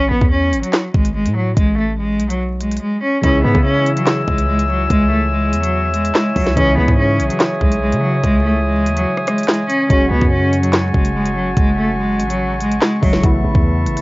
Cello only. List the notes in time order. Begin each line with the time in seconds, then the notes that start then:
0.11 B3
0.31 C#4
0.63 F#3
0.95 G#3
1.15 G#3
1.36 F#3
1.57 G#3
1.78 A3
1.99 G#3
2.30 F#3
2.61 G#3
2.82 G#3
3.03 C#4
3.23 C#4
3.44 B3
3.65 C#4
3.97 F#3
4.28 G#3
4.48 G#3
4.70 F#3
4.91 G#3
5.11 A3
5.32 G#3
5.63 F#3
5.94 G#3
6.15 G#3
6.36 F#3
6.57 C#4
6.78 B3
6.99 C#4
7.30 F#3
7.61 G#3
7.82 G#3
8.03 F#3
8.24 G#3
8.44 A3
8.65 G#3
8.97 F#3
9.28 G#3
9.48 G#3
9.69 C#4
9.90 C#4
10.11 B3
10.33 C#4
10.63 F#3
10.95 G#3
11.15 G#3
11.36 F#3
11.57 G#3
11.78 A3
11.99 G#3
12.30 F#3
12.61 G#3
12.82 G#3
13.03 F#3